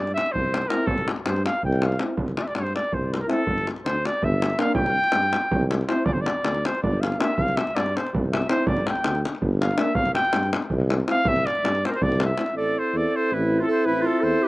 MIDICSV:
0, 0, Header, 1, 7, 480
1, 0, Start_track
1, 0, Tempo, 370599
1, 1138, Time_signature, 7, 3, 24, 8
1, 18753, End_track
2, 0, Start_track
2, 0, Title_t, "Trumpet"
2, 0, Program_c, 0, 56
2, 0, Note_on_c, 0, 74, 83
2, 177, Note_off_c, 0, 74, 0
2, 184, Note_on_c, 0, 76, 112
2, 414, Note_on_c, 0, 72, 95
2, 434, Note_off_c, 0, 76, 0
2, 884, Note_on_c, 0, 70, 98
2, 904, Note_off_c, 0, 72, 0
2, 1123, Note_on_c, 0, 69, 88
2, 1142, Note_off_c, 0, 70, 0
2, 1397, Note_off_c, 0, 69, 0
2, 1623, Note_on_c, 0, 72, 82
2, 1875, Note_off_c, 0, 72, 0
2, 1885, Note_on_c, 0, 77, 96
2, 2103, Note_off_c, 0, 77, 0
2, 2137, Note_on_c, 0, 79, 74
2, 2394, Note_on_c, 0, 77, 73
2, 2413, Note_off_c, 0, 79, 0
2, 2607, Note_off_c, 0, 77, 0
2, 3088, Note_on_c, 0, 74, 78
2, 3146, Note_on_c, 0, 76, 64
2, 3165, Note_off_c, 0, 74, 0
2, 3200, Note_on_c, 0, 74, 88
2, 3220, Note_off_c, 0, 76, 0
2, 3314, Note_off_c, 0, 74, 0
2, 3320, Note_on_c, 0, 72, 83
2, 3556, Note_off_c, 0, 72, 0
2, 3564, Note_on_c, 0, 74, 93
2, 3806, Note_on_c, 0, 72, 73
2, 3826, Note_off_c, 0, 74, 0
2, 4051, Note_on_c, 0, 70, 82
2, 4070, Note_off_c, 0, 72, 0
2, 4100, Note_on_c, 0, 72, 57
2, 4119, Note_off_c, 0, 70, 0
2, 4155, Note_on_c, 0, 70, 86
2, 4174, Note_off_c, 0, 72, 0
2, 4196, Note_off_c, 0, 70, 0
2, 4196, Note_on_c, 0, 70, 66
2, 4268, Note_on_c, 0, 69, 103
2, 4288, Note_off_c, 0, 70, 0
2, 4760, Note_off_c, 0, 69, 0
2, 4978, Note_on_c, 0, 72, 93
2, 5257, Note_on_c, 0, 74, 99
2, 5276, Note_off_c, 0, 72, 0
2, 5491, Note_on_c, 0, 76, 94
2, 5510, Note_off_c, 0, 74, 0
2, 5941, Note_on_c, 0, 77, 112
2, 5961, Note_off_c, 0, 76, 0
2, 6142, Note_off_c, 0, 77, 0
2, 6150, Note_on_c, 0, 79, 123
2, 7346, Note_off_c, 0, 79, 0
2, 7616, Note_on_c, 0, 72, 90
2, 7834, Note_on_c, 0, 74, 93
2, 7853, Note_off_c, 0, 72, 0
2, 7938, Note_on_c, 0, 72, 76
2, 7958, Note_off_c, 0, 74, 0
2, 8041, Note_on_c, 0, 74, 86
2, 8061, Note_off_c, 0, 72, 0
2, 8618, Note_on_c, 0, 72, 93
2, 8638, Note_off_c, 0, 74, 0
2, 8830, Note_off_c, 0, 72, 0
2, 8838, Note_on_c, 0, 74, 75
2, 9075, Note_on_c, 0, 77, 81
2, 9095, Note_off_c, 0, 74, 0
2, 9314, Note_on_c, 0, 76, 103
2, 9334, Note_off_c, 0, 77, 0
2, 9529, Note_on_c, 0, 77, 91
2, 9549, Note_off_c, 0, 76, 0
2, 9797, Note_on_c, 0, 76, 85
2, 9816, Note_off_c, 0, 77, 0
2, 10041, Note_on_c, 0, 74, 87
2, 10060, Note_off_c, 0, 76, 0
2, 10312, Note_on_c, 0, 72, 78
2, 10332, Note_off_c, 0, 74, 0
2, 10531, Note_off_c, 0, 72, 0
2, 10779, Note_on_c, 0, 76, 83
2, 10982, Note_off_c, 0, 76, 0
2, 10999, Note_on_c, 0, 72, 96
2, 11230, Note_on_c, 0, 74, 86
2, 11249, Note_off_c, 0, 72, 0
2, 11488, Note_off_c, 0, 74, 0
2, 11502, Note_on_c, 0, 79, 88
2, 11951, Note_off_c, 0, 79, 0
2, 12451, Note_on_c, 0, 77, 85
2, 12659, Note_on_c, 0, 76, 98
2, 12678, Note_off_c, 0, 77, 0
2, 12880, Note_on_c, 0, 77, 103
2, 12900, Note_off_c, 0, 76, 0
2, 13130, Note_off_c, 0, 77, 0
2, 13138, Note_on_c, 0, 79, 100
2, 13607, Note_off_c, 0, 79, 0
2, 14379, Note_on_c, 0, 77, 111
2, 14610, Note_on_c, 0, 76, 109
2, 14630, Note_off_c, 0, 77, 0
2, 14838, Note_on_c, 0, 74, 100
2, 14858, Note_off_c, 0, 76, 0
2, 15353, Note_on_c, 0, 72, 91
2, 15373, Note_off_c, 0, 74, 0
2, 15394, Note_on_c, 0, 70, 79
2, 15414, Note_off_c, 0, 72, 0
2, 15477, Note_on_c, 0, 72, 98
2, 15497, Note_off_c, 0, 70, 0
2, 15575, Note_on_c, 0, 74, 82
2, 15594, Note_off_c, 0, 72, 0
2, 15855, Note_on_c, 0, 76, 93
2, 15874, Note_off_c, 0, 74, 0
2, 16268, Note_off_c, 0, 76, 0
2, 16276, Note_on_c, 0, 74, 89
2, 16559, Note_on_c, 0, 72, 100
2, 16579, Note_off_c, 0, 74, 0
2, 16794, Note_on_c, 0, 74, 82
2, 16813, Note_off_c, 0, 72, 0
2, 17041, Note_on_c, 0, 72, 96
2, 17060, Note_off_c, 0, 74, 0
2, 17274, Note_on_c, 0, 71, 78
2, 17294, Note_off_c, 0, 72, 0
2, 17643, Note_on_c, 0, 69, 86
2, 17663, Note_off_c, 0, 71, 0
2, 17732, Note_off_c, 0, 69, 0
2, 17757, Note_on_c, 0, 72, 91
2, 17942, Note_on_c, 0, 71, 92
2, 17961, Note_off_c, 0, 72, 0
2, 18214, Note_on_c, 0, 69, 89
2, 18234, Note_off_c, 0, 71, 0
2, 18436, Note_on_c, 0, 72, 106
2, 18456, Note_off_c, 0, 69, 0
2, 18709, Note_on_c, 0, 71, 100
2, 18729, Note_off_c, 0, 72, 0
2, 18753, Note_off_c, 0, 71, 0
2, 18753, End_track
3, 0, Start_track
3, 0, Title_t, "Clarinet"
3, 0, Program_c, 1, 71
3, 16257, Note_on_c, 1, 69, 72
3, 16557, Note_off_c, 1, 69, 0
3, 16557, Note_on_c, 1, 69, 60
3, 16751, Note_off_c, 1, 69, 0
3, 16751, Note_on_c, 1, 69, 71
3, 17042, Note_off_c, 1, 69, 0
3, 17042, Note_on_c, 1, 69, 78
3, 17255, Note_on_c, 1, 64, 77
3, 17275, Note_off_c, 1, 69, 0
3, 17610, Note_on_c, 1, 65, 73
3, 17629, Note_off_c, 1, 64, 0
3, 17708, Note_off_c, 1, 65, 0
3, 17716, Note_on_c, 1, 69, 82
3, 17950, Note_on_c, 1, 64, 89
3, 17969, Note_off_c, 1, 69, 0
3, 18150, Note_on_c, 1, 65, 80
3, 18170, Note_off_c, 1, 64, 0
3, 18405, Note_on_c, 1, 69, 82
3, 18424, Note_off_c, 1, 65, 0
3, 18682, Note_on_c, 1, 67, 90
3, 18701, Note_off_c, 1, 69, 0
3, 18753, Note_off_c, 1, 67, 0
3, 18753, End_track
4, 0, Start_track
4, 0, Title_t, "Euphonium"
4, 0, Program_c, 2, 58
4, 924, Note_on_c, 2, 64, 66
4, 1118, Note_off_c, 2, 64, 0
4, 2584, Note_on_c, 2, 64, 53
4, 2782, Note_off_c, 2, 64, 0
4, 4241, Note_on_c, 2, 64, 77
4, 4443, Note_off_c, 2, 64, 0
4, 5942, Note_on_c, 2, 62, 71
4, 6140, Note_off_c, 2, 62, 0
4, 7630, Note_on_c, 2, 64, 73
4, 7826, Note_off_c, 2, 64, 0
4, 9303, Note_on_c, 2, 62, 51
4, 9500, Note_off_c, 2, 62, 0
4, 11001, Note_on_c, 2, 64, 71
4, 11195, Note_off_c, 2, 64, 0
4, 12642, Note_on_c, 2, 62, 76
4, 12843, Note_off_c, 2, 62, 0
4, 14348, Note_on_c, 2, 64, 61
4, 14543, Note_off_c, 2, 64, 0
4, 16020, Note_on_c, 2, 64, 67
4, 16111, Note_off_c, 2, 64, 0
4, 16227, Note_on_c, 2, 64, 73
4, 18753, Note_off_c, 2, 64, 0
4, 18753, End_track
5, 0, Start_track
5, 0, Title_t, "Euphonium"
5, 0, Program_c, 3, 58
5, 900, Note_on_c, 3, 60, 58
5, 1099, Note_off_c, 3, 60, 0
5, 2589, Note_on_c, 3, 60, 56
5, 2786, Note_off_c, 3, 60, 0
5, 4252, Note_on_c, 3, 60, 69
5, 4452, Note_off_c, 3, 60, 0
5, 5934, Note_on_c, 3, 58, 81
5, 6133, Note_off_c, 3, 58, 0
5, 7602, Note_on_c, 3, 60, 61
5, 7803, Note_off_c, 3, 60, 0
5, 9298, Note_on_c, 3, 58, 54
5, 9496, Note_off_c, 3, 58, 0
5, 10999, Note_on_c, 3, 60, 71
5, 11193, Note_off_c, 3, 60, 0
5, 12665, Note_on_c, 3, 58, 65
5, 12862, Note_off_c, 3, 58, 0
5, 14336, Note_on_c, 3, 60, 66
5, 14534, Note_off_c, 3, 60, 0
5, 16009, Note_on_c, 3, 60, 55
5, 16102, Note_off_c, 3, 60, 0
5, 16218, Note_on_c, 3, 60, 59
5, 18753, Note_off_c, 3, 60, 0
5, 18753, End_track
6, 0, Start_track
6, 0, Title_t, "Tuba"
6, 0, Program_c, 4, 58
6, 0, Note_on_c, 4, 43, 89
6, 214, Note_off_c, 4, 43, 0
6, 438, Note_on_c, 4, 36, 100
6, 821, Note_off_c, 4, 36, 0
6, 1131, Note_on_c, 4, 36, 74
6, 1405, Note_off_c, 4, 36, 0
6, 1625, Note_on_c, 4, 43, 90
6, 1899, Note_off_c, 4, 43, 0
6, 2138, Note_on_c, 4, 36, 114
6, 2516, Note_off_c, 4, 36, 0
6, 2809, Note_on_c, 4, 36, 72
6, 3083, Note_off_c, 4, 36, 0
6, 3310, Note_on_c, 4, 43, 76
6, 3582, Note_off_c, 4, 43, 0
6, 3798, Note_on_c, 4, 36, 90
6, 4181, Note_off_c, 4, 36, 0
6, 4484, Note_on_c, 4, 31, 83
6, 4759, Note_off_c, 4, 31, 0
6, 4981, Note_on_c, 4, 38, 84
6, 5255, Note_off_c, 4, 38, 0
6, 5471, Note_on_c, 4, 31, 123
6, 5856, Note_off_c, 4, 31, 0
6, 6163, Note_on_c, 4, 36, 99
6, 6438, Note_off_c, 4, 36, 0
6, 6664, Note_on_c, 4, 43, 82
6, 6937, Note_off_c, 4, 43, 0
6, 7153, Note_on_c, 4, 36, 113
6, 7537, Note_off_c, 4, 36, 0
6, 7840, Note_on_c, 4, 31, 89
6, 8115, Note_off_c, 4, 31, 0
6, 8346, Note_on_c, 4, 38, 85
6, 8618, Note_off_c, 4, 38, 0
6, 8854, Note_on_c, 4, 31, 104
6, 9232, Note_off_c, 4, 31, 0
6, 9564, Note_on_c, 4, 36, 95
6, 9827, Note_off_c, 4, 36, 0
6, 10044, Note_on_c, 4, 43, 80
6, 10311, Note_off_c, 4, 43, 0
6, 10533, Note_on_c, 4, 36, 97
6, 10911, Note_off_c, 4, 36, 0
6, 11216, Note_on_c, 4, 31, 87
6, 11487, Note_off_c, 4, 31, 0
6, 11699, Note_on_c, 4, 38, 91
6, 11973, Note_off_c, 4, 38, 0
6, 12198, Note_on_c, 4, 31, 118
6, 12580, Note_off_c, 4, 31, 0
6, 12906, Note_on_c, 4, 36, 82
6, 13174, Note_off_c, 4, 36, 0
6, 13391, Note_on_c, 4, 43, 83
6, 13662, Note_off_c, 4, 43, 0
6, 13880, Note_on_c, 4, 36, 113
6, 14261, Note_off_c, 4, 36, 0
6, 14565, Note_on_c, 4, 36, 103
6, 14839, Note_off_c, 4, 36, 0
6, 15067, Note_on_c, 4, 43, 88
6, 15338, Note_off_c, 4, 43, 0
6, 15566, Note_on_c, 4, 36, 122
6, 15945, Note_off_c, 4, 36, 0
6, 16248, Note_on_c, 4, 33, 72
6, 16520, Note_off_c, 4, 33, 0
6, 16752, Note_on_c, 4, 40, 93
6, 16896, Note_off_c, 4, 40, 0
6, 17251, Note_on_c, 4, 33, 114
6, 17629, Note_off_c, 4, 33, 0
6, 17939, Note_on_c, 4, 33, 81
6, 18209, Note_off_c, 4, 33, 0
6, 18429, Note_on_c, 4, 40, 98
6, 18574, Note_off_c, 4, 40, 0
6, 18753, End_track
7, 0, Start_track
7, 0, Title_t, "Davul"
7, 95, Note_on_c, 9, 37, 30
7, 224, Note_off_c, 9, 37, 0
7, 228, Note_on_c, 9, 37, 65
7, 340, Note_off_c, 9, 37, 0
7, 340, Note_on_c, 9, 37, 28
7, 458, Note_on_c, 9, 43, 74
7, 469, Note_off_c, 9, 37, 0
7, 587, Note_off_c, 9, 43, 0
7, 700, Note_on_c, 9, 37, 70
7, 798, Note_off_c, 9, 37, 0
7, 798, Note_on_c, 9, 37, 29
7, 911, Note_off_c, 9, 37, 0
7, 911, Note_on_c, 9, 37, 73
7, 1041, Note_off_c, 9, 37, 0
7, 1130, Note_on_c, 9, 43, 108
7, 1259, Note_off_c, 9, 43, 0
7, 1266, Note_on_c, 9, 37, 31
7, 1395, Note_off_c, 9, 37, 0
7, 1395, Note_on_c, 9, 37, 71
7, 1505, Note_off_c, 9, 37, 0
7, 1505, Note_on_c, 9, 37, 31
7, 1628, Note_off_c, 9, 37, 0
7, 1628, Note_on_c, 9, 37, 71
7, 1758, Note_off_c, 9, 37, 0
7, 1767, Note_on_c, 9, 37, 25
7, 1887, Note_off_c, 9, 37, 0
7, 1887, Note_on_c, 9, 37, 70
7, 2011, Note_off_c, 9, 37, 0
7, 2011, Note_on_c, 9, 37, 19
7, 2111, Note_on_c, 9, 43, 64
7, 2140, Note_off_c, 9, 37, 0
7, 2235, Note_on_c, 9, 37, 26
7, 2241, Note_off_c, 9, 43, 0
7, 2355, Note_off_c, 9, 37, 0
7, 2355, Note_on_c, 9, 37, 65
7, 2485, Note_off_c, 9, 37, 0
7, 2489, Note_on_c, 9, 37, 25
7, 2583, Note_off_c, 9, 37, 0
7, 2583, Note_on_c, 9, 37, 67
7, 2713, Note_off_c, 9, 37, 0
7, 2816, Note_on_c, 9, 43, 89
7, 2946, Note_off_c, 9, 43, 0
7, 2953, Note_on_c, 9, 37, 26
7, 3073, Note_off_c, 9, 37, 0
7, 3073, Note_on_c, 9, 37, 66
7, 3202, Note_off_c, 9, 37, 0
7, 3206, Note_on_c, 9, 37, 28
7, 3303, Note_off_c, 9, 37, 0
7, 3303, Note_on_c, 9, 37, 61
7, 3432, Note_off_c, 9, 37, 0
7, 3453, Note_on_c, 9, 37, 23
7, 3571, Note_off_c, 9, 37, 0
7, 3571, Note_on_c, 9, 37, 58
7, 3683, Note_off_c, 9, 37, 0
7, 3683, Note_on_c, 9, 37, 18
7, 3789, Note_on_c, 9, 43, 73
7, 3813, Note_off_c, 9, 37, 0
7, 3919, Note_off_c, 9, 43, 0
7, 4063, Note_on_c, 9, 37, 61
7, 4159, Note_off_c, 9, 37, 0
7, 4159, Note_on_c, 9, 37, 21
7, 4268, Note_off_c, 9, 37, 0
7, 4268, Note_on_c, 9, 37, 54
7, 4398, Note_off_c, 9, 37, 0
7, 4495, Note_on_c, 9, 43, 79
7, 4624, Note_off_c, 9, 43, 0
7, 4635, Note_on_c, 9, 37, 26
7, 4757, Note_off_c, 9, 37, 0
7, 4757, Note_on_c, 9, 37, 51
7, 4875, Note_off_c, 9, 37, 0
7, 4875, Note_on_c, 9, 37, 26
7, 5002, Note_off_c, 9, 37, 0
7, 5002, Note_on_c, 9, 37, 71
7, 5131, Note_off_c, 9, 37, 0
7, 5251, Note_on_c, 9, 37, 64
7, 5362, Note_off_c, 9, 37, 0
7, 5362, Note_on_c, 9, 37, 19
7, 5472, Note_on_c, 9, 43, 82
7, 5492, Note_off_c, 9, 37, 0
7, 5602, Note_off_c, 9, 43, 0
7, 5728, Note_on_c, 9, 37, 79
7, 5827, Note_off_c, 9, 37, 0
7, 5827, Note_on_c, 9, 37, 28
7, 5942, Note_off_c, 9, 37, 0
7, 5942, Note_on_c, 9, 37, 82
7, 6072, Note_off_c, 9, 37, 0
7, 6149, Note_on_c, 9, 43, 113
7, 6279, Note_off_c, 9, 43, 0
7, 6297, Note_on_c, 9, 37, 34
7, 6426, Note_off_c, 9, 37, 0
7, 6524, Note_on_c, 9, 37, 35
7, 6630, Note_off_c, 9, 37, 0
7, 6630, Note_on_c, 9, 37, 75
7, 6760, Note_off_c, 9, 37, 0
7, 6769, Note_on_c, 9, 37, 33
7, 6899, Note_off_c, 9, 37, 0
7, 6900, Note_on_c, 9, 37, 74
7, 7013, Note_off_c, 9, 37, 0
7, 7013, Note_on_c, 9, 37, 29
7, 7143, Note_off_c, 9, 37, 0
7, 7143, Note_on_c, 9, 43, 101
7, 7272, Note_off_c, 9, 43, 0
7, 7393, Note_on_c, 9, 37, 78
7, 7522, Note_off_c, 9, 37, 0
7, 7525, Note_on_c, 9, 37, 30
7, 7624, Note_off_c, 9, 37, 0
7, 7624, Note_on_c, 9, 37, 66
7, 7754, Note_off_c, 9, 37, 0
7, 7845, Note_on_c, 9, 43, 108
7, 7974, Note_off_c, 9, 43, 0
7, 8113, Note_on_c, 9, 37, 74
7, 8242, Note_off_c, 9, 37, 0
7, 8348, Note_on_c, 9, 37, 75
7, 8477, Note_off_c, 9, 37, 0
7, 8477, Note_on_c, 9, 37, 31
7, 8606, Note_off_c, 9, 37, 0
7, 8615, Note_on_c, 9, 37, 75
7, 8740, Note_off_c, 9, 37, 0
7, 8740, Note_on_c, 9, 37, 27
7, 8853, Note_on_c, 9, 43, 87
7, 8869, Note_off_c, 9, 37, 0
7, 8982, Note_off_c, 9, 43, 0
7, 9107, Note_on_c, 9, 37, 75
7, 9224, Note_off_c, 9, 37, 0
7, 9224, Note_on_c, 9, 37, 31
7, 9332, Note_off_c, 9, 37, 0
7, 9332, Note_on_c, 9, 37, 85
7, 9461, Note_off_c, 9, 37, 0
7, 9556, Note_on_c, 9, 43, 94
7, 9685, Note_off_c, 9, 43, 0
7, 9692, Note_on_c, 9, 37, 28
7, 9809, Note_off_c, 9, 37, 0
7, 9809, Note_on_c, 9, 37, 75
7, 9936, Note_off_c, 9, 37, 0
7, 9936, Note_on_c, 9, 37, 32
7, 10057, Note_off_c, 9, 37, 0
7, 10057, Note_on_c, 9, 37, 76
7, 10182, Note_off_c, 9, 37, 0
7, 10182, Note_on_c, 9, 37, 31
7, 10312, Note_off_c, 9, 37, 0
7, 10320, Note_on_c, 9, 37, 71
7, 10446, Note_off_c, 9, 37, 0
7, 10446, Note_on_c, 9, 37, 29
7, 10549, Note_on_c, 9, 43, 94
7, 10576, Note_off_c, 9, 37, 0
7, 10679, Note_off_c, 9, 43, 0
7, 10795, Note_on_c, 9, 37, 73
7, 10905, Note_off_c, 9, 37, 0
7, 10905, Note_on_c, 9, 37, 29
7, 11002, Note_off_c, 9, 37, 0
7, 11002, Note_on_c, 9, 37, 73
7, 11131, Note_off_c, 9, 37, 0
7, 11227, Note_on_c, 9, 43, 116
7, 11354, Note_on_c, 9, 37, 28
7, 11356, Note_off_c, 9, 43, 0
7, 11484, Note_off_c, 9, 37, 0
7, 11484, Note_on_c, 9, 37, 79
7, 11598, Note_off_c, 9, 37, 0
7, 11598, Note_on_c, 9, 37, 30
7, 11713, Note_off_c, 9, 37, 0
7, 11713, Note_on_c, 9, 37, 80
7, 11843, Note_off_c, 9, 37, 0
7, 11851, Note_on_c, 9, 37, 29
7, 11981, Note_off_c, 9, 37, 0
7, 11985, Note_on_c, 9, 37, 68
7, 12108, Note_off_c, 9, 37, 0
7, 12108, Note_on_c, 9, 37, 27
7, 12200, Note_on_c, 9, 43, 82
7, 12238, Note_off_c, 9, 37, 0
7, 12329, Note_off_c, 9, 43, 0
7, 12457, Note_on_c, 9, 37, 70
7, 12573, Note_off_c, 9, 37, 0
7, 12573, Note_on_c, 9, 37, 26
7, 12663, Note_off_c, 9, 37, 0
7, 12663, Note_on_c, 9, 37, 80
7, 12792, Note_off_c, 9, 37, 0
7, 12888, Note_on_c, 9, 43, 103
7, 13018, Note_off_c, 9, 43, 0
7, 13024, Note_on_c, 9, 37, 34
7, 13149, Note_off_c, 9, 37, 0
7, 13149, Note_on_c, 9, 37, 67
7, 13273, Note_off_c, 9, 37, 0
7, 13273, Note_on_c, 9, 37, 34
7, 13377, Note_off_c, 9, 37, 0
7, 13377, Note_on_c, 9, 37, 85
7, 13507, Note_off_c, 9, 37, 0
7, 13508, Note_on_c, 9, 37, 29
7, 13638, Note_off_c, 9, 37, 0
7, 13638, Note_on_c, 9, 37, 74
7, 13759, Note_off_c, 9, 37, 0
7, 13759, Note_on_c, 9, 37, 23
7, 13859, Note_on_c, 9, 43, 78
7, 13889, Note_off_c, 9, 37, 0
7, 13988, Note_off_c, 9, 43, 0
7, 14122, Note_on_c, 9, 37, 70
7, 14246, Note_off_c, 9, 37, 0
7, 14246, Note_on_c, 9, 37, 23
7, 14349, Note_off_c, 9, 37, 0
7, 14349, Note_on_c, 9, 37, 66
7, 14479, Note_off_c, 9, 37, 0
7, 14573, Note_on_c, 9, 43, 104
7, 14703, Note_off_c, 9, 43, 0
7, 14717, Note_on_c, 9, 37, 26
7, 14846, Note_off_c, 9, 37, 0
7, 14854, Note_on_c, 9, 37, 51
7, 14963, Note_off_c, 9, 37, 0
7, 14963, Note_on_c, 9, 37, 31
7, 15088, Note_off_c, 9, 37, 0
7, 15088, Note_on_c, 9, 37, 72
7, 15217, Note_off_c, 9, 37, 0
7, 15217, Note_on_c, 9, 37, 29
7, 15347, Note_off_c, 9, 37, 0
7, 15351, Note_on_c, 9, 37, 66
7, 15460, Note_off_c, 9, 37, 0
7, 15460, Note_on_c, 9, 37, 26
7, 15563, Note_on_c, 9, 43, 91
7, 15590, Note_off_c, 9, 37, 0
7, 15693, Note_off_c, 9, 43, 0
7, 15696, Note_on_c, 9, 37, 27
7, 15801, Note_off_c, 9, 37, 0
7, 15801, Note_on_c, 9, 37, 72
7, 15931, Note_off_c, 9, 37, 0
7, 16028, Note_on_c, 9, 37, 67
7, 16141, Note_off_c, 9, 37, 0
7, 16141, Note_on_c, 9, 37, 31
7, 16270, Note_off_c, 9, 37, 0
7, 18753, End_track
0, 0, End_of_file